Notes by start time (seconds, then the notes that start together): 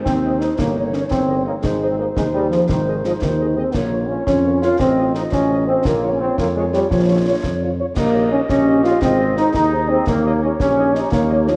0.05 D#2 C4 D#4 C5, concert bass drum, snare
0.25 D#4 C5 D#5
0.40 D#4 C5 D#5, snare
0.58 G1 A#3 D#4 C#5, concert bass drum, snare
0.76 D#4 A#4 C#5 D#5
0.93 C#4 D#4 A#4 C#5 D#5, snare
1.10 G1 C4, concert bass drum, snare
1.29 D#4 A#4 C#5 D#5
1.46 A#3 D#4 A#4 C#5 D#5
1.62 G#1 G#3 D#4 C5, concert bass drum, snare
1.82 G#4 C5 D#5
1.90 C4
1.99 A#3 G#4 C5 D#5
2.16 D#2 G#3 D#4 C5, concert bass drum, snare
2.33 G3 G#4 C5 D#5
2.51 F3 G#4 C5 D#5, snare
2.69 G#1 D#3 D#4 C5, concert bass drum, snare
2.87 G#4 C5 D#5
3.04 F3 G#4 C5 D#5, snare
3.21 D#2 D#3 D#4 C5, concert bass drum, snare
3.39 G#4 C5 D#5
3.57 C4 G#4 C5 D#5
3.74 A#1 A#3 F4 C#5, concert bass drum, snare, crash
3.92 F4 A#4 C#5
4.08 C#4 F4 A#4 C#5
4.27 F2 C#4 F4 C#5, concert bass drum, snare
4.44 F4 A#4 C#5
4.62 F4 A#4 C#5, snare
4.79 A1 C4 F4 D#5, concert bass drum, snare
4.97 F4 C5 D#5
5.14 D#4 F4 C5 D#5, snare
5.32 A1 C#4, concert bass drum, snare
5.50 F4 C5 D#5
5.67 C4 F4 C5 D#5
5.85 A#1 A#3 F4 C#5, concert bass drum, snare
6.03 F4 C#5
6.12 C#4
6.21 C4 F4 C#5
6.38 F2 A#3 F4 C#5, concert bass drum, snare
6.55 G#3 F4 C#5
6.73 G3 F4 C#5, snare
6.90 A#1 F3 F4 C#5, concert bass drum, snare
7.09 F4 C#5
7.27 F4 C#5
7.43 F2, concert bass drum, snare
7.62 F4 C#5
7.79 F4 C#5
7.96 A#1 A#3 G4 D#5, concert bass drum, snare, crash
8.13 D#4 G4 C#5 D#5
8.31 C#4 D#4 G4 C#5 D#5
8.49 A#1 C#4 G4 D#5, concert bass drum, snare
8.66 D#4 G4 C#5 D#5
8.83 D#4 F4 G4 C#5 D#5, snare
9.01 G#1 C4 G#4 D#5, concert bass drum, snare
9.19 D#4 G#4 C5 D#5
9.36 D#4 G#4 C5 D#5, snare
9.54 D#2 D#4 G#4 D#5, concert bass drum, snare
9.72 D#4 G#4 C5 D#5
9.89 C4 D#4 G#4 C5 D#5
10.07 D#2 A#3 G4 C#5, concert bass drum, snare
10.25 D#4 G4 C#5 D#5
10.42 C#4 D#4 G4 C#5 D#5
10.60 A#1 C#4 G4 C#5, concert bass drum, snare
10.77 D#4 G4 C#5 D#5
10.95 D#4 G4 C#5 D#5, snare
11.12 D#2 A#3 G4 C#5, concert bass drum, snare
11.30 D#4 G4 C#5 D#5
11.47 F3 D#4 G4 C#5 D#5, snare